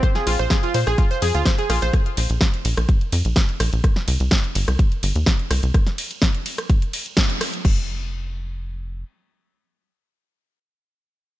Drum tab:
CC |----------------|----------------|----------------|----------------|
RD |--x---x---x---x-|--x---x---x---x-|--x---x---x---x-|--x---x---x---x-|
HH |xxoxxxoxxxoxxxox|xxoxxxoxxxoxxxox|xxoxxxoxxxoxxxox|xxoxxxoxxxoxxxox|
SD |ro--o--r----o-r-|r---o--r----o-r-|ro--o--r----o-r-|ro--o--r----o-r-|
BD |o---o---o---o---|o---o---o---o---|o---o---o---o---|o---o---o---o---|

CC |x---------------|----------------|
RD |----------------|----------------|
HH |----------------|----------------|
SD |----------------|----------------|
BD |o---------------|----------------|